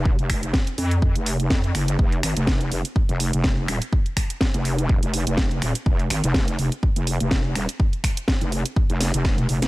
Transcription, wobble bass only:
X:1
M:4/4
L:1/16
Q:"Swing 16ths" 1/4=124
K:Fphr
V:1 name="Wobble bass" clef=bass
F,,, F,,,3 z2 F,,3 F,,,3 F,,2 G,,,2 | F,,,2 A,,, F,,,3 F,,, z2 F,,,2 F,,,3 E,,, z | z4 z F,,,4 F,,,2 F,,,3 E,,, z | F,,,2 A,,, F,,,3 F,,, z2 F,,,2 F,,,3 E,,, z |
z4 z F,,,2 z2 F,,,2 F,,,3 F,,, F,,, |]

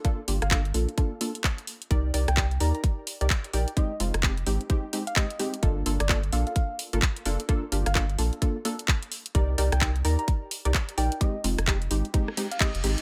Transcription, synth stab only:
X:1
M:4/4
L:1/16
Q:"Swing 16ths" 1/4=129
K:Gm
V:1 name="Synth stab"
[B,DFA] z [B,DFG] z [B,DFA] z [B,DFA] z [B,DFA] z [B,DFA] z4 z | [EGBd]2 [EGBd] z [EGBd] z [EGBd]4- [EGBd] [EGBd] z2 [EGBd] z | [_A,CEG] z [A,CEF] z [A,CEG] z [A,CEG] z [A,CEG] z [A,CEG] z [A,CEG] z [A,CEG] z | [B,DFA]2 [B,DFA] z [B,DFA] z [B,DFA]4- [B,DFA] [B,DFA] z2 [B,DFA] z |
[B,DFA] z [B,DFG] z [B,DFA] z [B,DFA] z [B,DFA] z [B,DFA] z4 z | [EGBd]2 [EGBd] z [EGBd] z [EGBd]4- [EGBd] [EGBd] z2 [EGBd] z | [_A,CEG] z [A,CEF] z [A,CEG] z [A,CEG] z [A,CEG] z [A,CEG] z [A,CEG] z [A,CEG] z |]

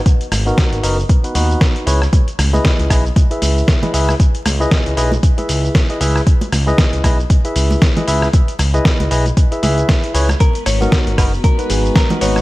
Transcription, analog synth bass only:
X:1
M:4/4
L:1/16
Q:"Swing 16ths" 1/4=116
K:C#dor
V:1 name="Analog synth bass" clef=bass
z2 G,,, z2 G,,, F,,, z3 D,, z3 C,, z | z2 C,, z2 C,, B,,, z3 C,, z3 C,, z | z2 C,, z2 C,, B,,, z3 C,, z3 C,, z | z2 C,, z2 C,, B,,, z3 C,, z3 C,, z |
z2 C,, z2 C,, B,,, z3 C,, z3 C,, z | z2 G,,, z2 G,,, F,,, z3 G,,, z3 G,,, z |]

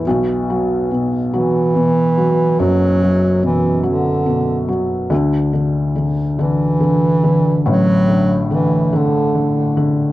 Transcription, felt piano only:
X:1
M:6/8
L:1/8
Q:3/8=47
K:Bdor
V:1 name="Felt piano" clef=bass
[B,,,B,,] F, B,, F, B,, F, | [F,,,F,,] F, B,, F, B,, F, | [D,,D,] D, D, D, D, D, | [A,,,A,,] D, D, D, D, D, |]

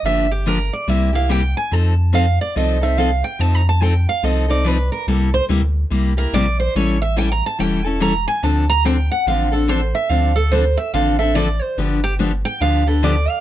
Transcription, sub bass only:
X:1
M:4/4
L:1/8
Q:"Swing" 1/4=143
K:Cmix
V:1 name="Sub bass" clef=bass
G,,,4 C,,4 | F,,4 C,,4 | F,,4 C,,4 | C,,2 D,,2 C,,2 B,,,2 |
A,,,4 E,,,4 | D,,4 A,,,4 | D,,4 A,,,4 | G,,,4 D,,4 |]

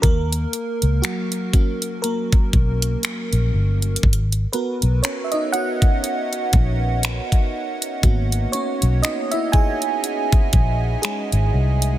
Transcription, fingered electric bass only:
X:1
M:4/4
L:1/16
Q:"Swing 16ths" 1/4=60
K:G#m
V:1 name="Fingered electric bass" clef=bass
D,,2 z C,, z6 B,,,2 z A,,, =G,,,2 | G,,,2 z B,,, z6 A,,,3 z3 | G,,,2 z B,,, z6 A,,,2 z G,,, ^B,,,2 |]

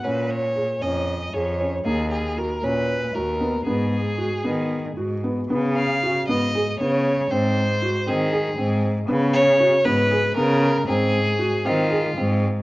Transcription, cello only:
X:1
M:7/8
L:1/8
Q:1/4=116
K:G#dor
V:1 name="Cello" clef=bass
A,,3 E,,2 E,,2 | D,,3 A,,2 D,,2 | G,,3 D,2 G,,2 | C,3 G,,2 C,2 |
G,,3 D,2 G,,2 | C,3 G,,2 C,2 | G,,3 D,2 G,,2 |]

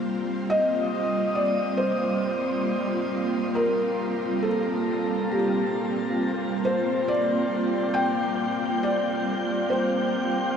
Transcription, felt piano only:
X:1
M:4/4
L:1/8
Q:1/4=68
K:Gm
V:1 name="Felt piano"
z e2 d c4 | B2 A2 G3 c | d2 g2 d2 c2 |]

